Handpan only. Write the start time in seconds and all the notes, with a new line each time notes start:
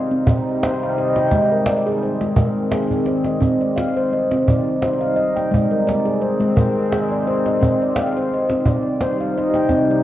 Already playing: C4 C5 D#5 F5
0.11 C4
0.63 C5
0.83 F5
0.98 D#5
1.17 G5
1.32 G#3
1.52 A#4
1.67 D5
1.86 G#4
2.03 C5
2.21 G#3
2.37 A#4
2.71 G#4
2.91 D5
3.07 C5
3.26 D#5
3.41 C4
3.61 D5
3.76 F5
3.97 C5
4.13 D#5
4.32 C4
4.48 D5
4.82 C5
5.01 F5
5.16 D#5
5.36 G5
5.51 G#3
5.71 A#4
5.87 D5
6.05 G#4
6.21 C5
6.40 G#3
6.56 A#4
6.93 G#4
7.11 D5
7.27 C5
7.47 D#5
7.61 C4
7.82 D5
7.98 F5
8.17 C5
8.34 D#5
8.51 C4
8.68 D5
9.02 C5
9.20 F5
9.37 D#5
9.55 G5
9.70 C4
9.90 D5